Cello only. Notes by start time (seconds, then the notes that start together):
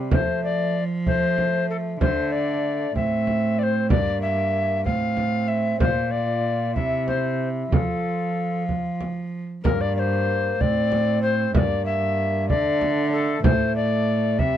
Already playing: C3
0.12 F3
2.01 D3
2.95 A2
3.90 G2
4.85 A2
5.80 A#2
6.76 C3
7.72 F3
9.65 G2
10.60 A2
11.55 G2
12.50 D3
13.44 A2
14.39 C3